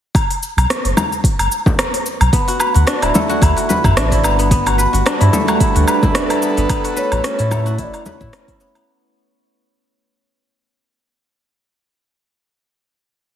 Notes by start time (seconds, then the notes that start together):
0.15 kick, open hi-hat, cabasa, low woodblock
0.30 open hi-hat, cabasa
0.43 cabasa
0.57 B1, open hi-hat, cabasa, low woodblock
0.70 cross-stick, open hi-hat, cabasa
0.85 F#1, open hi-hat
0.97 frame drum, cabasa, low woodblock
1.13 cabasa
1.24 kick, open hi-hat, cabasa
1.39 F#1, open hi-hat, cabasa, low woodblock
1.52 cabasa
1.66 kick, frame drum, cabasa
1.79 cross-stick, open hi-hat, cabasa, low woodblock
1.94 open hi-hat, cabasa
2.06 cabasa
2.21 B1, open hi-hat, cabasa, low woodblock
2.33 B3, kick, open hi-hat, cabasa
2.48 F#4, open hi-hat, cabasa
2.59 B4, cabasa, low woodblock
2.74 D2 F#4, open hi-hat, cabasa
2.87 D4, cross-stick, open hi-hat, cabasa
3.02 D1 E4, open hi-hat, low woodblock
3.14 A3, frame drum, cabasa
3.29 F#4, cabasa
3.41 D2 E4, kick, open hi-hat, cabasa, low woodblock
3.56 F#4, open hi-hat, cabasa
3.69 B4, frame drum, cabasa
3.84 F#2 E4, kick, cabasa, low woodblock
3.97 A1 D4, cross-stick, open hi-hat, cabasa
4.12 E4, kick, open hi-hat, cabasa
4.23 G1 B3, cabasa, low woodblock
4.39 B3, open hi-hat, cabasa
4.51 G3 B3, kick, open hi-hat, cabasa
4.66 F#4, open hi-hat, cabasa, low woodblock
4.78 B4, cabasa
4.93 G1 F#4, open hi-hat, cabasa
5.06 D4, cross-stick, open hi-hat, cabasa, low woodblock
5.21 G2 D4 E4 A4, open hi-hat
5.33 A3, frame drum, cabasa
5.39 B4
5.48 F#4, cabasa, low woodblock
5.60 E4, kick, open hi-hat, cabasa
5.75 D2 F#4, open hi-hat, cabasa
5.88 B4, cabasa, low woodblock
6.03 E4, kick, frame drum, cabasa
6.15 D4, cross-stick, open hi-hat, cabasa
6.30 E4, open hi-hat, cabasa, low woodblock
6.42 B3, cabasa
6.57 G1 B3, open hi-hat, cabasa
6.69 A3 B3, kick, open hi-hat, cabasa, low woodblock
6.84 F#4, open hi-hat, cabasa
6.97 B4 C#5, cabasa
7.12 A1 E4 F#4, open hi-hat, cabasa, low woodblock
7.24 C#4, cross-stick, open hi-hat, cabasa
7.39 A2 E4, open hi-hat
7.51 A3, frame drum, cabasa, low woodblock
7.66 F#4 C#5, cabasa
7.78 G1 E4 E5, kick, open hi-hat, cabasa
7.83 D5
7.93 F#4, open hi-hat, cabasa, low woodblock
8.06 B4 C#5, frame drum, cabasa
8.21 A2 E4, kick, cabasa
8.33 C#4, cross-stick, open hi-hat, cabasa, low woodblock
8.48 E4, kick, open hi-hat, cabasa
8.60 B3, cabasa
8.75 B3, open hi-hat, cabasa, low woodblock